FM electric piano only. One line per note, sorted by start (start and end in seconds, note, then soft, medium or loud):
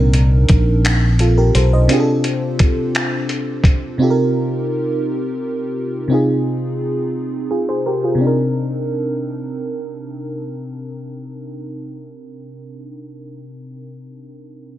0.00 1.84 A#2 medium
0.00 1.85 C4 medium
0.00 1.85 D4 medium
0.00 1.86 D#4 medium
0.00 1.18 A#4 medium
1.20 1.37 F4 medium
1.20 1.36 A4 medium
1.38 1.54 G4 medium
1.38 1.54 A#4 medium
1.55 1.71 A4 medium
1.55 1.71 C5 medium
1.73 2.06 C5 soft
1.73 2.06 D#5 medium
1.88 3.95 C3 medium
1.88 3.95 C4 medium
1.88 3.96 D4 medium
1.88 3.97 F4 medium
1.92 3.97 G4 medium
1.92 1.98 G#4 medium
2.00 4.01 A4 medium
3.98 6.05 C3 medium
3.98 6.06 C4 medium
3.98 6.06 D#4 medium
3.98 6.07 F4 medium
4.03 6.08 G4 medium
4.03 4.08 A4 medium
4.10 6.11 A#4 medium
6.08 8.14 C3 medium
6.08 8.16 C4 medium
6.08 8.17 D#4 medium
6.13 7.49 F4 medium
6.13 7.49 G#4 medium
7.51 7.68 F4 soft
7.51 7.67 G#4 medium
7.69 7.85 G#4 soft
7.69 7.85 C5 medium
7.86 8.03 G4 soft
7.86 8.02 A#4 medium
8.04 8.37 F4 soft
8.04 8.37 G#4 soft
8.15 12.84 C3 medium
8.15 12.87 C4 medium
8.21 12.90 D4 medium
8.21 12.93 D#4 medium
8.27 12.96 A#4 medium